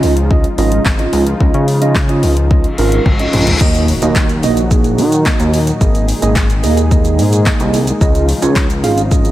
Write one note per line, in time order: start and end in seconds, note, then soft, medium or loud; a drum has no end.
0.00 0.46 C#2 loud
0.00 3.57 C#3 medium
0.00 3.57 F3 medium
0.00 3.57 G#3 medium
0.00 0.13 C#4 medium
0.00 3.57 D#4 medium
0.00 0.13 F4 medium
0.00 3.57 F4 medium
0.00 0.13 D#5 loud
0.00 open hi-hat medium
0.17 closed hi-hat medium
0.30 0.46 C#4 medium
0.30 0.46 F4 medium
0.30 0.46 D#5 medium
0.30 kick loud
0.44 closed hi-hat soft
0.58 0.79 G#1 loud
0.58 0.82 C#4 medium
0.58 0.82 F4 medium
0.58 0.82 D#5 loud
0.58 open hi-hat medium
0.72 closed hi-hat medium
0.86 1.07 G#1 medium
0.86 kick loud
0.86 snare medium
0.86 clap loud
0.99 1.23 C#4 medium
0.99 1.23 F4 medium
0.99 1.23 D#5 medium
0.99 closed hi-hat medium
1.13 1.34 C#2 medium
1.13 open hi-hat medium
1.27 closed hi-hat medium
1.40 1.51 C#2 loud
1.40 1.64 C#4 medium
1.40 1.64 F4 medium
1.40 1.64 D#5 loud
1.40 kick loud
1.54 2.25 C#3 medium
1.54 closed hi-hat soft
1.68 open hi-hat medium
1.81 1.97 C#4 medium
1.81 1.98 F4 medium
1.81 1.98 D#5 loud
1.81 closed hi-hat medium
1.95 kick loud
1.95 snare medium
1.95 clap loud
2.09 2.33 C#4 medium
2.09 2.33 F4 medium
2.09 2.33 D#5 medium
2.09 closed hi-hat medium
2.23 2.66 C#2 medium
2.23 open hi-hat medium
2.37 closed hi-hat medium
2.50 2.66 C#4 medium
2.50 2.66 F4 medium
2.50 2.67 D#5 medium
2.50 kick loud
2.50 reverse cymbal medium
2.64 closed hi-hat soft
2.78 3.00 G#1 loud
2.78 3.02 C#4 medium
2.78 3.02 F4 medium
2.78 3.02 A#4 loud
2.78 open hi-hat medium
2.92 closed hi-hat medium
3.06 3.27 G#1 loud
3.06 kick loud
3.06 high tom medium
3.19 3.43 C#4 medium
3.19 3.43 F4 medium
3.19 3.43 D#5 medium
3.19 closed hi-hat medium
3.33 3.55 A#1 medium
3.33 mid tom medium
3.33 open hi-hat medium
3.47 closed hi-hat medium
3.47 floor tom medium
3.61 3.93 D#2 loud
3.61 5.79 A#2 medium
3.61 5.79 D#3 medium
3.61 5.79 F#3 medium
3.61 3.85 A#3 medium
3.61 3.85 D#4 medium
3.61 7.97 D#4 medium
3.61 5.79 F#4 medium
3.61 3.85 F#4 medium
3.61 3.85 D#5 medium
3.61 kick loud
3.61 crash loud
3.61 impact medium
3.61 shaker medium
3.75 closed hi-hat soft
3.75 shaker soft
3.88 open hi-hat medium
3.88 shaker soft
4.02 4.45 D#2 medium
4.02 4.26 A#3 medium
4.02 4.26 D#4 medium
4.02 4.26 F#4 medium
4.02 4.26 D#5 medium
4.02 closed hi-hat medium
4.02 shaker medium
4.16 kick loud
4.16 snare medium
4.16 clap loud
4.16 shaker medium
4.29 closed hi-hat medium
4.29 shaker medium
4.43 5.00 A#1 loud
4.43 4.59 A#3 medium
4.43 4.59 D#4 medium
4.43 4.59 F#4 medium
4.43 4.59 D#5 loud
4.43 open hi-hat medium
4.43 shaker medium
4.57 closed hi-hat medium
4.57 shaker medium
4.71 5.02 A#3 medium
4.71 5.03 D#4 medium
4.71 5.03 F#4 medium
4.71 5.03 G#4 medium
4.71 kick loud
4.71 shaker medium
4.84 closed hi-hat soft
4.84 shaker soft
4.98 5.30 D#3 loud
4.98 open hi-hat medium
4.98 shaker soft
5.12 closed hi-hat medium
5.12 shaker medium
5.26 5.58 A#3 medium
5.26 5.58 D#4 medium
5.26 5.58 F#4 medium
5.26 5.58 D#5 medium
5.26 kick loud
5.26 snare medium
5.26 clap medium
5.26 clap loud
5.26 shaker medium
5.40 5.72 D#2 loud
5.40 closed hi-hat medium
5.40 shaker medium
5.54 open hi-hat medium
5.54 shaker medium
5.67 closed hi-hat medium
5.67 shaker medium
5.81 6.13 G#1 loud
5.81 7.99 A#2 medium
5.81 7.99 D#3 medium
5.81 9.31 G#3 medium
5.81 6.05 A#3 medium
5.81 6.05 D#4 medium
5.81 6.05 G#4 medium
5.81 7.99 G#4 medium
5.81 6.05 D#5 loud
5.81 kick loud
5.81 shaker medium
5.95 closed hi-hat soft
5.95 shaker soft
6.08 open hi-hat medium
6.08 shaker soft
6.22 6.65 G#1 loud
6.22 6.46 A#3 medium
6.22 6.46 D#4 medium
6.22 6.46 G#4 medium
6.22 6.46 D#5 loud
6.22 closed hi-hat medium
6.22 shaker medium
6.36 kick loud
6.36 snare medium
6.36 clap loud
6.36 shaker medium
6.50 closed hi-hat medium
6.50 shaker medium
6.63 7.20 D#2 loud
6.63 6.79 A#3 medium
6.63 6.79 D#4 medium
6.63 6.79 G#4 medium
6.63 6.79 D#5 loud
6.63 open hi-hat medium
6.63 shaker medium
6.77 closed hi-hat medium
6.77 shaker medium
6.91 7.23 A#3 medium
6.91 7.23 D#4 medium
6.91 7.23 G#4 medium
6.91 7.23 D#5 medium
6.91 kick loud
6.91 shaker medium
7.05 closed hi-hat soft
7.05 shaker soft
7.18 7.50 G#2 loud
7.18 open hi-hat medium
7.18 shaker soft
7.33 closed hi-hat medium
7.33 shaker medium
7.46 7.78 A#3 medium
7.46 7.78 D#4 medium
7.46 7.78 G#4 medium
7.46 7.78 D#5 loud
7.46 kick loud
7.46 snare medium
7.46 clap medium
7.46 clap loud
7.46 shaker medium
7.60 7.92 C2 loud
7.60 closed hi-hat medium
7.60 shaker medium
7.74 open hi-hat medium
7.74 shaker medium
7.87 closed hi-hat medium
7.87 shaker medium
8.01 8.33 C#2 loud
8.01 9.31 C#3 medium
8.01 9.31 F3 medium
8.01 8.25 C#4 medium
8.01 9.31 D#4 medium
8.01 8.25 F4 medium
8.01 9.31 F4 medium
8.01 8.25 G#4 medium
8.01 8.25 D#5 loud
8.01 kick loud
8.01 shaker medium
8.15 closed hi-hat soft
8.15 shaker soft
8.29 open hi-hat medium
8.29 shaker medium
8.42 8.85 C#2 medium
8.42 8.66 C#4 medium
8.42 8.66 F4 medium
8.42 8.66 G#4 medium
8.42 8.66 C#5 loud
8.42 closed hi-hat medium
8.42 shaker medium
8.56 kick loud
8.56 snare medium
8.56 clap loud
8.56 shaker medium
8.70 closed hi-hat medium
8.70 shaker medium
8.83 9.31 G#1 medium
8.83 8.99 C#4 medium
8.83 8.99 F4 medium
8.83 8.99 G#4 medium
8.83 8.99 F5 loud
8.83 open hi-hat medium
8.83 shaker medium
8.98 closed hi-hat medium
8.98 shaker medium
9.11 9.31 C#4 medium
9.11 9.31 F4 medium
9.11 9.31 G#4 medium
9.11 9.31 D#5 loud
9.11 kick loud
9.11 shaker medium
9.25 closed hi-hat soft
9.25 shaker medium